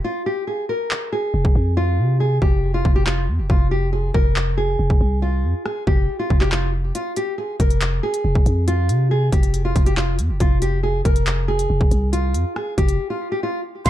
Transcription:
0.04 nylon-string guitar F4
0.26 nylon-string guitar G4
0.47 nylon-string guitar G#4
0.69 nylon-string guitar A#4
0.91 clap
1.12 nylon-string guitar G#4
1.34 808-style bass F1
1.45 808-style bass F1, kick
1.55 808-style bass F2
1.77 nylon-string guitar F4
1.99 808-style bass C3
2.20 nylon-string guitar G#4
2.42 808-style bass F1, nylon-string guitar G4, kick
2.74 nylon-string guitar F4
2.85 808-style bass F1, kick
2.96 nylon-string guitar G4
3.06 nylon-string guitar F4, clap
3.28 808-style bass F2
3.39 808-style bass F1
3.50 808-style bass F1, nylon-string guitar F4, kick
3.71 nylon-string guitar G4
3.93 nylon-string guitar G#4
4.14 808-style bass F1, nylon-string guitar A#4, kick
4.36 clap
4.57 nylon-string guitar G#4
4.79 808-style bass F1
4.90 808-style bass F1, kick
5.01 808-style bass C2
5.22 nylon-string guitar F4
5.44 808-style bass F2
5.66 nylon-string guitar G#4, cross-stick
5.87 808-style bass F1, nylon-string guitar G4, kick
6.19 nylon-string guitar F4
6.30 808-style bass F1, kick
6.41 nylon-string guitar G4, clap
6.52 nylon-string guitar F4, clap
6.95 nylon-string guitar F4, closed hi-hat
7.16 nylon-string guitar G4, closed hi-hat
7.38 nylon-string guitar G#4
7.60 808-style bass F1, nylon-string guitar A#4, kick, closed hi-hat
7.70 closed hi-hat
7.81 clap, closed hi-hat
8.03 nylon-string guitar G#4
8.14 closed hi-hat
8.25 808-style bass F1
8.35 808-style bass F1, kick
8.46 808-style bass F2, closed hi-hat
8.68 nylon-string guitar F4, closed hi-hat
8.89 808-style bass C3, closed hi-hat
9.11 nylon-string guitar G#4
9.32 808-style bass F1, nylon-string guitar G4, kick, closed hi-hat
9.43 closed hi-hat
9.54 closed hi-hat
9.65 nylon-string guitar F4
9.76 808-style bass F1, kick, closed hi-hat
9.86 nylon-string guitar G4, closed hi-hat
9.97 nylon-string guitar F4, clap
10.19 808-style bass F2, closed hi-hat
10.30 808-style bass F1
10.40 808-style bass F1, nylon-string guitar F4, kick, closed hi-hat
10.62 nylon-string guitar G4, closed hi-hat
10.83 nylon-string guitar G#4
11.05 808-style bass F1, nylon-string guitar A#4, kick, closed hi-hat
11.16 closed hi-hat
11.27 clap, closed hi-hat
11.48 nylon-string guitar G#4
11.59 closed hi-hat
11.70 808-style bass F1
11.81 808-style bass F1, kick
11.91 808-style bass C2, closed hi-hat
12.13 nylon-string guitar F4, closed hi-hat
12.34 808-style bass F2, closed hi-hat
12.56 nylon-string guitar G#4, cross-stick
12.78 808-style bass F1, nylon-string guitar G4, kick, closed hi-hat
12.88 closed hi-hat
13.10 nylon-string guitar F4
13.32 nylon-string guitar G4
13.43 nylon-string guitar F4
13.86 808-style bass F1, tine electric piano C3, nylon-string guitar F5, flute C6, kick, closed hi-hat, crash

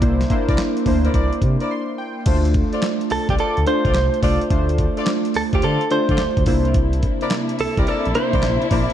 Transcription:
Already playing: synth keys A#3 D4 E4 C5
0.02 analog synth bass C2, synth keys A#3 D4 E4 C5, kick, closed hi-hat
0.21 snare, closed hi-hat
0.30 synth keys A#3 D4 E4 C5, kick, closed hi-hat
0.48 analog synth bass C2, horn section E4 A#4 C5 D5, kick, closed hi-hat
0.58 snare, clap, closed hi-hat
0.77 closed hi-hat
0.86 analog synth bass D2, synth keys A#3 D4 E4 C5, kick, open hi-hat
1.04 horn section E4 A#4 C5 D5, closed hi-hat
1.14 analog synth bass C2, horn section E4 A#4 C5 D5, kick, closed hi-hat
1.33 closed hi-hat
1.42 analog synth bass C3, kick, closed hi-hat
1.60 horn section E4 A#4 C5 D5, closed hi-hat
1.71 synth keys C6
1.98 synth keys G5
2.26 analog synth bass D2, synth keys A3 D4 F4 C5, kick, closed hi-hat, crash
2.45 closed hi-hat
2.54 kick, closed hi-hat
2.73 horn section F4 A4 C5 D5, closed hi-hat
2.82 snare, clap, closed hi-hat
3.01 closed hi-hat
3.10 analog synth bass C2, clean electric guitar A4, open hi-hat
3.29 analog synth bass C2, horn section F4 A4 C5 D5, clean electric guitar G4, kick, closed hi-hat
3.38 horn section F4 A4 C5 D5, clean electric guitar A4, closed hi-hat
3.57 analog synth bass D2, closed hi-hat
3.66 synth keys A3 D4 F4 C5, clean electric guitar C5, closed hi-hat
3.85 analog synth bass C2, horn section F4 A4 C5 D5, kick, closed hi-hat
3.95 analog synth bass C2, snare, clap, closed hi-hat
4.14 closed hi-hat
4.22 analog synth bass C2, synth keys A3 D4 F4 C5, horn section F4 A4 C5 D5, kick, open hi-hat
4.42 closed hi-hat
4.50 analog synth bass D2, synth keys A3 D4 F4 C5, kick, closed hi-hat
4.69 closed hi-hat
4.78 kick, closed hi-hat
4.97 horn section F4 A4 C5 D5, closed hi-hat
5.06 snare, clap, closed hi-hat
5.25 closed hi-hat
5.34 analog synth bass D2, clean electric guitar A4, open hi-hat
5.53 analog synth bass D2, horn section F4 A4 C5 D5, clean electric guitar G4, kick, closed hi-hat
5.62 analog synth bass D3, horn section F4 A4 C5 D5, clean electric guitar A4, closed hi-hat
5.81 closed hi-hat
5.91 analog synth bass D3, synth keys A3 D4 F4 C5, clean electric guitar C5, closed hi-hat
6.09 analog synth bass D3, horn section F4 A4 C5 D5, kick, closed hi-hat
6.18 analog synth bass D2, snare, clap, closed hi-hat
6.37 analog synth bass D2, kick, closed hi-hat
6.46 analog synth bass C2, synth keys A#3 D4 E4 C5, kick, open hi-hat
6.65 closed hi-hat
6.74 string section C3 A#3 D4 E4, kick, closed hi-hat
6.93 closed hi-hat
7.03 kick, closed hi-hat
7.21 horn section E4 A#4 C5 D5, closed hi-hat
7.31 snare, clap, closed hi-hat
7.49 closed hi-hat
7.59 analog synth bass C2, clean electric guitar A4, open hi-hat
7.77 analog synth bass C2, horn section E4 A#4 C5 D5, clean electric guitar G4, kick, closed hi-hat
7.87 horn section E4 A#4 C5 D5, clean electric guitar A4, closed hi-hat
8.05 analog synth bass A#1, closed hi-hat
8.15 synth keys A#3 D4 E4 C5, clean electric guitar C5, closed hi-hat
8.33 analog synth bass C2, horn section E4 A#4 C5 D5, kick, closed hi-hat
8.43 analog synth bass A#1, snare, clap, closed hi-hat
8.62 closed hi-hat
8.71 analog synth bass A#1, synth keys A#3 D4 E4 C5, horn section E4 A#4 C5 D5, kick, open hi-hat
8.90 closed hi-hat

